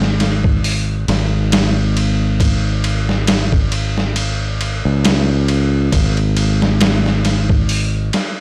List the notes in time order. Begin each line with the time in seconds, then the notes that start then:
Already playing: G#1
0.02 snare
0.20 snare, ride
0.44 kick
0.64 open hi-hat
1.08 G#1, snare, ride
1.52 snare, ride
1.97 ride
2.40 kick, ride
2.84 ride
3.09 snare
3.27 snare, ride
3.52 kick
3.72 ride
3.98 snare
4.16 ride
4.61 ride
4.85 C#2
5.05 snare, ride
5.48 ride
5.92 G#1, kick, ride
6.17 ride
6.37 ride
6.62 snare
6.81 snare, ride
7.06 snare
7.25 snare, ride
7.49 kick
7.69 open hi-hat
8.13 snare, ride